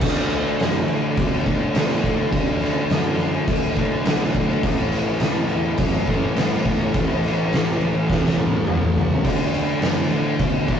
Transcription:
0.01 0.47 D2 loud
0.01 1.45 D3 medium
0.01 1.47 A3 loud
0.01 kick loud
0.01 crash loud
0.05 1.45 D4 loud
0.30 crash medium
0.60 0.82 F#2 medium
0.60 snare loud
0.60 crash medium
0.88 1.11 A2 medium
0.88 crash medium
1.17 1.62 B2 medium
1.17 kick loud
1.17 crash medium
1.46 1.74 D3 medium
1.46 1.76 A3 medium
1.46 1.73 D4 medium
1.46 kick medium
1.46 crash medium
1.75 1.98 B2 medium
1.75 2.31 D3 medium
1.75 2.33 A3 medium
1.75 2.33 D4 medium
1.75 snare loud
1.75 crash medium
2.03 2.26 A2 medium
2.03 kick medium
2.03 crash medium
2.32 2.78 D2 medium
2.32 3.75 D3 loud
2.32 3.78 A3 loud
2.32 3.76 D4 loud
2.32 kick loud
2.32 crash medium
2.61 snare soft
2.61 crash medium
2.89 3.35 F#2 loud
2.89 snare loud
2.89 crash medium
3.19 crash medium
3.47 3.93 A2 medium
3.47 kick loud
3.47 crash medium
3.77 4.04 D3 medium
3.77 4.07 A3 medium
3.77 4.04 D4 medium
3.77 kick medium
3.77 crash medium
4.05 4.50 B1 loud
4.05 4.62 D3 medium
4.05 4.64 A3 medium
4.05 4.63 D4 medium
4.05 snare loud
4.05 crash medium
4.35 kick medium
4.35 crash medium
4.63 5.08 A1 loud
4.63 6.05 A2 loud
4.63 6.06 E3 loud
4.63 6.07 A3 loud
4.63 kick loud
4.63 crash loud
4.92 snare soft
4.92 crash medium
5.20 5.43 C#2 loud
5.20 snare loud
5.20 crash medium
5.49 5.72 E2 medium
5.49 crash medium
5.77 6.23 F#2 loud
5.77 kick loud
5.77 crash medium
6.07 6.35 A2 medium
6.07 6.35 E3 medium
6.07 6.38 A3 medium
6.07 kick medium
6.07 crash medium
6.35 6.58 G2 loud
6.35 6.92 A2 medium
6.35 6.93 E3 medium
6.35 6.96 A3 medium
6.35 snare loud
6.35 crash loud
6.65 6.88 E2 medium
6.65 kick medium
6.65 crash medium
6.94 7.39 A1 loud
6.94 8.36 A2 loud
6.94 8.37 E3 loud
6.94 8.37 A3 loud
6.94 kick loud
6.94 crash medium
7.23 snare soft
7.23 crash medium
7.51 7.96 C#2 medium
7.51 snare loud
7.51 crash medium
7.81 crash medium
8.09 8.54 E2 medium
8.09 kick loud
8.09 snare medium
8.26 snare medium
8.37 8.65 A2 medium
8.37 8.66 E3 medium
8.37 8.69 A3 medium
8.37 high tom medium
8.53 high tom medium
8.66 9.12 E2 medium
8.66 9.22 A2 medium
8.66 9.23 E3 medium
8.66 9.26 A3 medium
8.66 mid tom loud
8.82 mid tom medium
8.96 floor tom loud
9.11 floor tom loud
9.24 9.69 D2 loud
9.24 10.66 D3 loud
9.24 10.67 A3 medium
9.24 10.68 D4 loud
9.24 kick loud
9.24 crash loud
9.54 crash medium
9.82 10.04 F#2 loud
9.82 snare loud
9.82 crash medium
10.10 10.33 A2 medium
10.10 crash medium
10.39 10.80 B2 medium
10.39 kick loud
10.39 crash medium
10.68 10.80 D3 medium
10.68 10.80 A3 medium
10.68 10.80 D4 medium
10.68 kick medium
10.68 crash medium

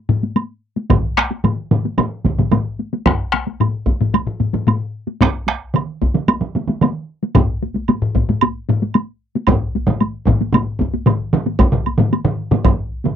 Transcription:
0.09 taiko low-mid medium
0.09 taiko high soft
0.23 taiko high soft
0.36 taiko high medium
0.36 high woodblock soft
0.76 taiko high soft
0.90 taiko loud
0.90 taiko low-mid medium
0.90 taiko mid medium
0.90 taiko high medium
0.90 high woodblock soft
1.17 taiko rim medium
1.17 taiko high soft
1.31 taiko high soft
1.44 taiko low-mid medium
1.44 taiko mid medium
1.44 taiko high medium
1.44 high woodblock soft
1.71 taiko low-mid medium
1.71 taiko mid medium
1.71 taiko high soft
1.85 taiko high medium
1.98 taiko low-mid medium
1.98 taiko mid medium
1.98 taiko high medium
1.98 high woodblock medium
2.25 taiko medium
2.25 taiko low-mid medium
2.25 taiko mid medium
2.25 taiko high soft
2.39 taiko low-mid medium
2.39 taiko mid medium
2.39 taiko high medium
2.52 taiko low-mid medium
2.52 taiko mid loud
2.52 taiko high medium
2.52 high woodblock soft
2.79 taiko high soft
2.93 taiko high medium
3.06 taiko rim medium
3.06 taiko loud
3.06 taiko high medium
3.06 high woodblock soft
3.32 taiko rim medium
3.32 taiko high soft
3.47 taiko high medium
3.60 taiko low-mid medium
3.60 taiko high medium
3.60 high woodblock soft
3.86 taiko medium
3.86 taiko high medium
4.01 taiko low-mid medium
4.01 taiko high medium
4.14 taiko low-mid medium
4.14 taiko high medium
4.14 high woodblock medium
4.27 taiko low-mid medium
4.40 taiko low-mid medium
4.40 taiko high soft
4.53 taiko low-mid medium
4.53 taiko high soft
4.67 taiko low-mid loud
4.67 taiko high medium
4.67 high woodblock soft
5.07 taiko high soft
5.21 taiko rim medium
5.21 taiko loud
5.21 taiko high medium
5.21 high woodblock medium
5.48 taiko rim medium
5.48 taiko high soft
5.74 taiko mid medium
5.74 taiko high medium
5.74 high woodblock soft
6.02 taiko medium
6.02 taiko high soft
6.15 taiko mid medium
6.15 taiko high medium
6.28 taiko mid medium
6.28 taiko high medium
6.28 high woodblock medium
6.41 taiko mid medium
6.55 taiko mid medium
6.55 taiko high medium
6.68 taiko mid medium
6.68 taiko high medium
6.81 taiko mid loud
6.81 taiko high medium
6.81 high woodblock soft
7.23 taiko high medium
7.35 taiko loud
7.35 taiko low-mid loud
7.35 taiko high medium
7.35 high woodblock medium
7.63 taiko high medium
7.76 taiko high medium
7.88 taiko low-mid medium
7.88 taiko high medium
7.88 high woodblock soft
8.02 taiko low-mid medium
8.15 taiko medium
8.15 taiko low-mid medium
8.15 taiko high medium
8.29 taiko low-mid medium
8.29 taiko high medium
8.41 taiko high medium
8.41 high woodblock medium
8.69 taiko low-mid loud
8.69 taiko high medium
8.82 taiko high medium
8.94 taiko high medium
8.94 high woodblock soft
9.35 taiko high medium
9.47 taiko loud
9.47 taiko low-mid loud
9.47 taiko mid loud
9.47 taiko high medium
9.47 high woodblock medium
9.75 taiko high medium
9.87 taiko low-mid loud
9.87 taiko mid loud
9.87 taiko high medium
10.01 taiko high medium
10.01 high woodblock soft
10.27 taiko medium
10.27 taiko low-mid loud
10.27 taiko mid medium
10.27 taiko high medium
10.41 taiko high medium
10.53 taiko low-mid loud
10.53 taiko mid loud
10.53 taiko high medium
10.53 high woodblock medium
10.80 taiko medium
10.80 taiko high medium
10.94 taiko high medium
11.06 taiko low-mid loud
11.06 taiko mid loud
11.06 taiko high medium
11.06 high woodblock soft
11.33 taiko low-mid loud
11.33 taiko mid loud
11.33 taiko high soft
11.47 taiko high medium
11.59 taiko loud
11.59 taiko high medium
11.59 high woodblock medium
11.72 taiko low-mid loud
11.72 taiko mid medium
11.86 taiko high medium
11.86 high woodblock soft
11.98 taiko low-mid loud
11.98 taiko mid loud
11.98 taiko high medium
12.13 taiko high medium
12.13 high woodblock soft
12.25 taiko low-mid loud
12.25 taiko mid loud
12.51 taiko low-mid loud
12.51 taiko mid medium
12.51 taiko high medium
12.65 taiko loud
12.65 taiko low-mid medium
12.65 taiko mid loud
12.65 taiko high medium
12.65 high woodblock soft
13.05 taiko low-mid medium
13.05 taiko mid medium
13.05 taiko high medium

